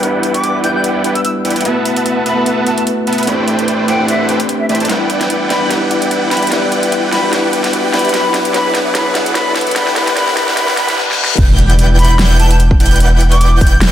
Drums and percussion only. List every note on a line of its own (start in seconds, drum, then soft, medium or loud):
0.03 closed hi-hat medium
0.23 closed hi-hat medium
0.34 closed hi-hat medium
0.44 closed hi-hat medium
0.64 closed hi-hat medium
0.84 closed hi-hat medium
1.04 closed hi-hat medium
1.15 closed hi-hat medium
1.25 closed hi-hat medium
1.45 closed hi-hat soft
1.50 closed hi-hat medium
1.56 closed hi-hat medium
1.61 closed hi-hat medium
1.65 closed hi-hat medium
1.85 closed hi-hat medium
1.96 closed hi-hat medium
2.06 closed hi-hat medium
2.26 closed hi-hat medium
2.46 closed hi-hat medium
2.67 closed hi-hat medium
2.78 closed hi-hat medium
2.87 closed hi-hat medium
3.07 closed hi-hat soft
3.13 closed hi-hat medium
3.18 closed hi-hat soft
3.23 closed hi-hat medium
3.27 closed hi-hat medium
3.48 closed hi-hat medium
3.59 closed hi-hat medium
3.68 closed hi-hat medium
3.88 closed hi-hat medium
4.08 closed hi-hat medium
4.29 closed hi-hat medium
4.40 closed hi-hat medium
4.49 closed hi-hat medium
4.69 closed hi-hat soft
4.75 closed hi-hat medium
4.80 closed hi-hat soft
4.85 closed hi-hat medium
4.89 snare soft
4.89 closed hi-hat medium
5.10 closed hi-hat medium
5.21 snare soft
5.21 closed hi-hat medium
5.30 closed hi-hat medium
5.50 snare soft
5.50 closed hi-hat medium
5.71 snare medium
5.71 closed hi-hat medium
5.91 closed hi-hat medium
6.02 closed hi-hat medium
6.11 closed hi-hat medium
6.31 snare medium
6.31 closed hi-hat soft
6.37 closed hi-hat medium
6.42 closed hi-hat soft
6.47 closed hi-hat medium
6.52 snare medium
6.52 closed hi-hat medium
6.72 closed hi-hat medium
6.83 closed hi-hat medium
6.92 closed hi-hat medium
7.12 snare medium
7.12 closed hi-hat medium
7.33 snare medium
7.33 closed hi-hat medium
7.53 closed hi-hat medium
7.64 snare medium
7.64 closed hi-hat medium
7.73 closed hi-hat medium
7.94 snare medium
7.94 closed hi-hat soft
7.99 closed hi-hat medium
8.05 closed hi-hat soft
8.09 closed hi-hat medium
8.14 snare medium
8.14 closed hi-hat medium
8.34 snare medium
8.34 closed hi-hat medium
8.45 closed hi-hat medium
8.54 snare medium
8.54 closed hi-hat medium
8.75 snare medium
8.75 closed hi-hat medium
8.95 snare medium
8.95 closed hi-hat medium
9.15 snare medium
9.15 closed hi-hat medium
9.26 closed hi-hat medium
9.35 snare medium
9.35 closed hi-hat medium
9.56 snare medium
9.56 closed hi-hat medium
9.61 closed hi-hat medium
9.67 closed hi-hat medium
9.71 closed hi-hat medium
9.76 snare medium
9.76 closed hi-hat medium
9.87 snare medium
9.96 snare medium
9.96 closed hi-hat medium
10.07 snare medium
10.07 closed hi-hat medium
10.17 snare medium
10.17 closed hi-hat medium
10.28 snare medium
10.37 snare loud
10.37 closed hi-hat medium
10.48 snare medium
10.57 snare loud
10.57 closed hi-hat medium
10.68 snare medium
10.77 snare loud
10.77 closed hi-hat medium
10.88 snare medium
10.88 closed hi-hat medium
10.98 snare medium
11.11 snare medium
11.25 snare medium
11.38 kick loud
11.38 closed hi-hat medium
11.38 crash loud
11.58 closed hi-hat medium
11.70 closed hi-hat medium
11.79 closed hi-hat medium
11.99 closed hi-hat soft
12.05 closed hi-hat medium
12.19 snare loud
12.19 closed hi-hat medium
12.39 closed hi-hat medium
12.51 closed hi-hat medium
12.60 closed hi-hat medium
12.71 kick medium
12.80 closed hi-hat medium
12.86 closed hi-hat medium
12.91 closed hi-hat medium
12.96 closed hi-hat medium
13.00 closed hi-hat medium
13.21 closed hi-hat medium
13.32 closed hi-hat medium
13.41 closed hi-hat medium
13.61 kick medium
13.61 closed hi-hat soft
13.67 closed hi-hat medium
13.81 snare loud
13.81 closed hi-hat medium